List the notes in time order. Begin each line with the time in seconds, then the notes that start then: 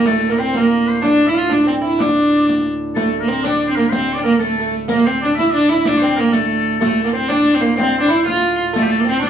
Already playing: D2 A2
0.05 A3 A4, riq
0.29 A#3 A#4
0.38 C4 C5
0.54 A#3 A#4, riq
0.88 C5, riq
1.02 D4 D5, riq
1.27 E4 E5
1.34 F4 F5
1.49 D4 D5, riq
1.66 C4
1.82 E4, riq
1.86 E4
1.99 D4 D5, riq
2.49 riq
2.95 D2 A2 A3 A4, riq
3.20 A#3 A#4
3.28 C4
3.43 D4 D5, riq
3.66 C5 D5
3.70 C4
3.75 A#3 A#4, riq
3.89 C4 C5, riq
4.15 D4 D5
4.23 A#3 A#4
4.39 A3 A4, riq
4.60 A3
4.73 riq
4.88 A#3 A#4, riq
5.05 C4 C5
5.21 D4 D5
5.36 E4 E5, riq
5.52 D4 D5
5.69 E4 E5, riq
5.85 D4 D5, riq
5.99 C4 C5
6.16 A#3 A#4, riq
6.32 A3 A4, riq
6.80 D2 A2 A3 A4, riq
7.04 A#3
7.13 C4 C5
7.28 D4 D5, riq
7.54 C4 C5
7.61 A#3, riq
7.77 C4 C5, riq
8.01 D4
8.08 E4
8.26 F4 F5, riq
8.60 riq
8.73 A3 A4, riq
8.83 G4
8.92 A4
9.00 A#3
9.05 C4
9.09 C5
9.19 D4 D5
9.23 D4, riq